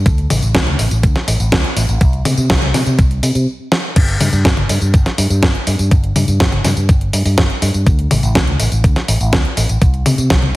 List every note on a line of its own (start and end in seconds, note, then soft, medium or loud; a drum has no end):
0.06 0.26 D2 loud
0.06 kick loud
0.06 closed hi-hat loud
0.06 tambourine soft
0.18 closed hi-hat soft
0.30 0.40 A1 medium
0.30 open hi-hat loud
0.30 high tom medium
0.30 tambourine medium
0.42 0.53 A1 loud
0.42 closed hi-hat soft
0.42 tambourine soft
0.55 0.75 D2 medium
0.55 kick loud
0.55 snare loud
0.55 closed hi-hat medium
0.55 tambourine soft
0.67 closed hi-hat soft
0.67 high tom medium
0.79 0.89 A1 medium
0.79 open hi-hat loud
0.79 tambourine medium
0.91 1.01 A1 medium
0.91 closed hi-hat soft
0.91 tambourine soft
1.03 1.14 D2 loud
1.03 kick loud
1.03 closed hi-hat medium
1.03 tambourine soft
1.16 snare soft
1.16 closed hi-hat soft
1.28 1.38 A1 loud
1.28 open hi-hat loud
1.28 tambourine medium
1.40 1.50 A1 loud
1.40 closed hi-hat soft
1.40 tambourine soft
1.52 1.62 D2 loud
1.52 kick loud
1.52 snare loud
1.52 closed hi-hat medium
1.64 closed hi-hat soft
1.76 1.87 A1 loud
1.76 open hi-hat loud
1.76 tambourine medium
1.89 1.99 A1 loud
1.89 closed hi-hat soft
1.89 tambourine soft
2.01 2.21 C2 loud
2.01 kick loud
2.01 closed hi-hat medium
2.01 tambourine soft
2.13 closed hi-hat soft
2.25 2.35 C3 medium
2.25 open hi-hat loud
2.25 high tom medium
2.25 tambourine medium
2.38 2.48 C3 loud
2.38 closed hi-hat soft
2.38 tambourine soft
2.50 2.70 C2 loud
2.50 kick loud
2.50 snare loud
2.50 closed hi-hat medium
2.62 closed hi-hat soft
2.62 high tom medium
2.74 2.84 C3 medium
2.74 snare soft
2.74 open hi-hat loud
2.74 high tom medium
2.74 tambourine medium
2.86 2.96 C3 medium
2.86 closed hi-hat soft
2.86 tambourine soft
2.99 3.19 C2 medium
2.99 kick loud
2.99 closed hi-hat medium
2.99 tambourine soft
3.11 closed hi-hat soft
3.23 3.33 C3 medium
3.23 open hi-hat loud
3.23 tambourine medium
3.35 3.45 C3 medium
3.35 closed hi-hat soft
3.35 tambourine soft
3.72 snare medium
3.96 4.16 G1 loud
3.96 kick loud
3.96 closed hi-hat loud
3.96 crash loud
3.96 tambourine soft
4.08 closed hi-hat soft
4.21 4.31 G2 medium
4.21 open hi-hat loud
4.21 high tom medium
4.21 tambourine medium
4.33 4.43 G2 loud
4.33 closed hi-hat soft
4.33 tambourine soft
4.45 4.65 G1 loud
4.45 kick loud
4.45 snare loud
4.45 closed hi-hat loud
4.57 closed hi-hat soft
4.57 high tom medium
4.69 4.79 G2 medium
4.69 open hi-hat loud
4.69 tambourine medium
4.81 4.92 G2 medium
4.81 closed hi-hat soft
4.81 tambourine soft
4.94 5.04 G1 medium
4.94 kick loud
4.94 closed hi-hat medium
4.94 tambourine soft
5.06 snare soft
5.06 closed hi-hat soft
5.18 5.28 G2 loud
5.18 open hi-hat loud
5.18 tambourine medium
5.30 5.40 G2 loud
5.30 closed hi-hat soft
5.30 tambourine soft
5.43 5.53 G1 loud
5.43 kick loud
5.43 snare loud
5.43 closed hi-hat loud
5.43 tambourine soft
5.55 closed hi-hat soft
5.67 5.77 G2 loud
5.67 open hi-hat loud
5.67 tambourine medium
5.79 5.89 G2 medium
5.79 closed hi-hat soft
5.79 tambourine soft
5.91 6.12 G1 loud
5.91 kick loud
5.91 closed hi-hat loud
5.91 tambourine soft
6.04 closed hi-hat soft
6.16 6.26 G2 medium
6.16 open hi-hat loud
6.16 high tom medium
6.16 tambourine medium
6.28 6.38 G2 loud
6.28 closed hi-hat soft
6.28 tambourine soft
6.40 6.60 G1 loud
6.40 kick loud
6.40 snare loud
6.40 closed hi-hat medium
6.52 closed hi-hat soft
6.52 high tom medium
6.64 6.75 G2 medium
6.64 snare soft
6.64 open hi-hat loud
6.64 high tom medium
6.64 tambourine medium
6.77 6.87 G2 medium
6.77 closed hi-hat soft
6.77 tambourine soft
6.89 7.09 G1 medium
6.89 kick loud
6.89 closed hi-hat loud
6.89 tambourine soft
7.01 closed hi-hat soft
7.13 7.23 G2 medium
7.13 open hi-hat loud
7.13 tambourine medium
7.25 7.36 G2 medium
7.25 open hi-hat medium
7.25 tambourine soft
7.38 7.48 G1 loud
7.38 kick loud
7.38 snare loud
7.38 closed hi-hat medium
7.50 closed hi-hat soft
7.62 7.72 G2 loud
7.62 open hi-hat loud
7.62 tambourine medium
7.74 7.84 G2 medium
7.74 closed hi-hat soft
7.74 tambourine soft
7.87 8.07 D2 loud
7.87 kick loud
7.87 closed hi-hat medium
7.87 tambourine soft
7.99 closed hi-hat soft
8.11 8.21 A1 medium
8.11 open hi-hat loud
8.11 high tom medium
8.11 tambourine medium
8.23 8.33 A1 loud
8.23 closed hi-hat soft
8.23 tambourine soft
8.35 8.55 D2 loud
8.35 kick loud
8.35 snare loud
8.35 closed hi-hat loud
8.47 closed hi-hat soft
8.47 high tom medium
8.60 8.70 A1 medium
8.60 open hi-hat loud
8.60 tambourine medium
8.72 8.82 A1 medium
8.72 closed hi-hat soft
8.72 tambourine soft
8.84 8.94 D2 medium
8.84 kick loud
8.84 closed hi-hat medium
8.84 tambourine soft
8.96 snare soft
8.96 closed hi-hat soft
9.08 9.18 A1 loud
9.08 open hi-hat loud
9.08 tambourine medium
9.21 9.31 A1 loud
9.21 closed hi-hat soft
9.21 tambourine soft
9.33 9.43 D2 loud
9.33 kick loud
9.33 snare loud
9.33 closed hi-hat medium
9.45 closed hi-hat soft
9.57 9.67 A1 loud
9.57 open hi-hat loud
9.57 tambourine medium
9.69 9.79 A1 medium
9.69 closed hi-hat soft
9.69 tambourine soft
9.82 10.02 C2 loud
9.82 kick loud
9.82 closed hi-hat medium
9.82 tambourine soft
9.94 closed hi-hat soft
10.06 10.16 C3 medium
10.06 open hi-hat loud
10.06 high tom medium
10.06 tambourine medium
10.18 10.28 C3 loud
10.18 closed hi-hat soft
10.18 tambourine soft
10.30 10.51 C2 medium
10.30 kick loud
10.30 snare loud
10.30 closed hi-hat medium
10.42 closed hi-hat soft
10.42 high tom medium